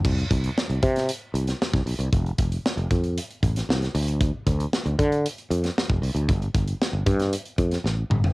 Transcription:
<<
  \new Staff \with { instrumentName = "Fretless electric bass" } { \clef bass \time 4/4 \key f \lydian \tempo 4 = 115 c,8 c,8 r16 c,16 c8. r16 c,8 r16 c,16 b,,16 c,16 | f,,8 f,,8 r16 f,,16 f,8. r16 a,,8 c,8 d,8~ | d,8 d,8 r16 d,16 d8. r16 f,8 r16 f,,16 c,16 d,16 | g,,8 g,,8 r16 g,,16 g,8. r16 f,8 a,,8 g,,8 | }
  \new DrumStaff \with { instrumentName = "Drums" } \drummode { \time 4/4 <cymc bd>16 hh16 <hh bd>16 hh16 sn16 hh16 <hh bd>16 <hh sn>16 hh8 hh16 <hh sn>16 sn16 <hh bd sn>16 hho16 hh16 | <hh bd>16 hh16 <hh bd>16 hh16 sn16 hh16 <hh bd>16 hh16 hh16 hh16 <hh bd>16 <hh sn>16 sn16 <hh sn>16 hho16 hh16 | <hh bd>8 <hh bd>16 hh16 sn16 hh16 <hh bd>16 hh16 hh16 hh16 hh16 <hh sn>16 sn16 bd16 hho16 hh16 | <hh bd>16 hh16 <hh bd>16 hh16 sn8 <hh bd>16 <hh sn>16 hh16 hh16 <hh bd>16 <hh sn>16 sn8 toml16 tomfh16 | }
>>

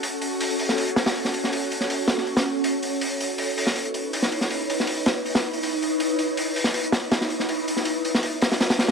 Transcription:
<<
  \new Staff \with { instrumentName = "Ambient pad" } { \time 4/4 \key cis \minor \tempo 4 = 161 << { cis''1~ | cis''1~ | cis''1~ | cis''1~ |
cis''1~ | cis''1 | } \\ { <cis' fis' a'>1~ | <cis' fis' a'>1 | <dis' e' b'>1~ | <dis' e' b'>1~ |
<dis' e' b'>1~ | <dis' e' b'>1 | } >> }
  \new DrumStaff \with { instrumentName = "Drums" } \drummode { \time 4/4 hho8 hho8 hho8 hho16 sn16 hho16 hh16 <hho sn>16 <hho sn>16 hho16 sn16 hho16 sn16 | hho8 hho16 sn16 hho8 <hho sn>16 sn16 hho16 <hho sn>8. hho8 hho8 | hho8 hho8 hho8 hho16 sn16 hho16 hh16 hho8 hho16 sn16 hho16 sn16 | hho8 hho16 sn16 hho8 <hho sn>8 hho16 <hho sn>8 hho16 hho8 hho8 |
hho8 hho8 hho8 hho16 sn16 hho16 hh16 <hho sn>8 <hho sn>16 sn16 hho16 sn16 | hho8 hho16 sn16 hho8 hho16 sn16 hho8 <hho sn>16 <hho sn>16 <hho sn>16 <hho sn>16 <hho sn>8 | }
>>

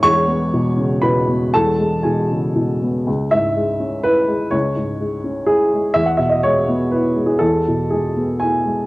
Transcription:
<<
  \new Staff \with { instrumentName = "Upright piano" } { \time 3/4 \key cis \minor \tempo 4 = 123 <cis'' cis'''>2 <b' b''>4 | <a' a''>4 <gis' gis''>4. r8 | r8 e''4. b'4 | cis''2 gis'4 |
e''16 fis''16 e''16 dis''16 cis''4 b'8. gis'16 | a'4 gis'4 gis''4 | }
  \new Staff \with { instrumentName = "Upright piano" } { \clef bass \time 3/4 \key cis \minor <e,, e,>8 b8 b,8 cis8 b,8 b8 | <e,, e,>8 gis8 b,8 cis8 b,8 b8 | cis,8 gis,8 gis8 cis'8 e'8 gis8 | cis,8 gis,8 gis8 cis'8 e'8 gis8 |
e,8 b,8 gis8 b8 e'8 gis8 | e,8 b,8 gis8 b8 e'8 gis8 | }
>>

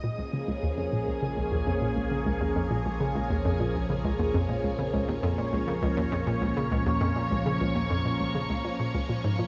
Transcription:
<<
  \new Staff \with { instrumentName = "String machine" } { \time 4/4 \key bes \minor \tempo 4 = 101 << { aes'1~ | aes'1 | des''1~ | des''1 | } \\ { <f bes des'>1~ | <f bes des'>1~ | <f bes des'>1~ | <f bes des'>1 | } >> }
  \new Staff \with { instrumentName = "Synth arpeggio sound" } { \clef bass \time 4/4 \key bes \minor bes,16 des,16 des16 des,16 ees,16 f,16 bes,16 des,16 des16 des,16 ees,16 f,16 bes,16 des,16 des16 des,16 | ees,16 f,16 bes,16 des,16 des16 des,16 ees,16 f,16 bes,16 des,16 des16 des,16 ees,16 f,16 bes,16 des,16 | des16 des,16 ees,16 f,16 bes,16 des,16 des16 des,16 ees,16 f,16 bes,16 des,16 des16 des,16 ees,16 f,16 | bes,16 des,16 des16 des,16 ees,16 f,16 bes,16 des,16 des16 des,16 bes,16 bes,16 des,16 bes,16 aes,16 bes,16 | }
  \new Staff \with { instrumentName = "Synth drone" } { \clef bass \time 4/4 \key bes \minor bes,,1~ | bes,,1~ | bes,,1~ | bes,,1 | }
>>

